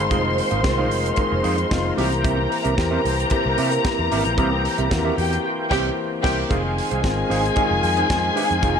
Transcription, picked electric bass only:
0.00 0.11 G1 medium
0.11 0.40 F1 medium
0.52 0.64 G#1 medium
0.64 0.92 C2 medium
0.92 1.10 F1 medium
1.32 1.41 F1 medium
1.44 1.63 F2 medium
1.71 1.90 F1 medium
1.98 2.46 C2 medium
2.66 2.74 C2 medium
2.78 2.97 E2 medium
3.05 3.24 C2 medium
3.46 3.54 C2 medium
3.58 3.77 C3 medium
3.99 4.08 E2 medium
4.12 4.21 G#1 medium
4.26 4.38 A#1 medium
4.38 4.66 C2 medium
4.79 4.87 C2 medium
4.91 5.10 D#2 medium
5.18 5.37 E2 medium
5.71 5.89 C2 medium
6.24 6.42 C2 loud
6.51 6.79 F1 loud
6.92 7.00 C2 medium
7.04 7.23 G#1 medium
7.30 7.49 G#1 medium
7.71 7.80 F1 medium
7.84 8.02 F2 loud
8.10 8.29 F2 medium
8.51 8.60 F2 medium
8.63 8.80 F1 loud

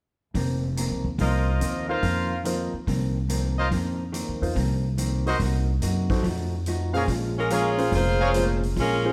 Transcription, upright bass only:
0.35 0.87 F1 medium
0.91 1.03 C2 soft
1.04 1.18 D#2 medium
1.18 1.58 C2 medium
1.61 2.00 D#2 medium
2.02 2.69 F2 medium
2.73 muted upright bass stroke soft
2.87 3.68 C2 medium
3.71 4.24 F2 medium
4.28 4.41 D#2 soft
4.41 4.55 E2 medium
4.56 5.36 C2 medium
5.39 5.79 C2 medium
5.81 6.21 F#2 medium
6.23 7.04 F2 medium
7.07 7.88 A#1 medium
7.92 8.73 F1 medium
8.76 9.13 A#1 medium

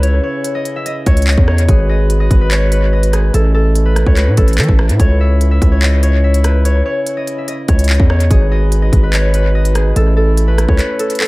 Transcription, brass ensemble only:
0.00 1.65 C#3 medium
0.00 1.65 C#4 medium
0.00 1.65 E4 medium
1.69 3.32 G#3 medium
1.69 3.32 F#4 medium
1.69 3.32 B4 medium
3.34 4.98 A3 medium
3.34 8.27 C#4 medium
3.34 8.27 E4 medium
5.00 8.27 C#3 medium
8.31 9.95 G#3 medium
8.31 9.95 D#4 medium
8.31 9.95 F#4 medium
8.31 9.95 B4 medium
9.96 11.28 A3 medium
9.96 11.28 C#4 medium
9.96 11.28 E4 medium

